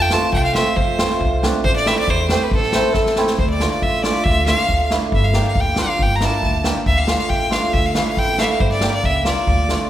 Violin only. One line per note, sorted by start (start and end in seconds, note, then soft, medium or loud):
0.02 0.15 G5 loud
0.13 0.33 A5 medium
0.34 0.42 G5 medium
0.42 0.55 F5 medium
0.42 0.46 G5 medium
0.55 0.78 E5 medium
0.76 1.42 C5 medium
1.64 1.74 C5 loud
1.76 1.89 D5 medium
1.88 1.97 E5 loud
1.99 2.12 D5 medium
2.10 2.30 C5 medium
2.31 2.45 C5 medium
2.43 2.53 B4 medium
2.56 3.15 A4 medium
3.39 3.49 C5 medium
3.50 3.70 D5 medium
3.71 3.84 D5 medium
3.83 3.98 E5 medium
3.98 4.04 E5 medium
4.03 4.26 D5 medium
4.24 4.46 E5 loud
4.46 4.87 F5 medium
5.15 5.26 E5 medium
5.25 5.46 F5 medium
5.47 5.62 F5 medium
5.60 5.80 G5 medium
5.82 6.04 F5 medium
6.03 6.17 G5 loud
6.16 6.26 A#5 medium
6.25 6.67 A5 medium
6.87 7.00 E5 medium
6.98 7.18 F5 medium
7.19 7.31 F5 medium
7.29 7.54 G5 medium
7.53 7.75 F5 medium
7.73 7.88 E5 loud
7.86 8.07 F5 medium
8.08 8.20 F5 medium
8.19 8.40 G5 loud
8.40 8.53 E5 medium
8.40 8.45 F5 medium
8.51 8.62 F5 medium
8.61 8.72 C5 medium
8.72 8.92 D5 medium
8.94 9.07 D5 medium
9.05 9.27 E5 medium
9.28 9.90 D5 medium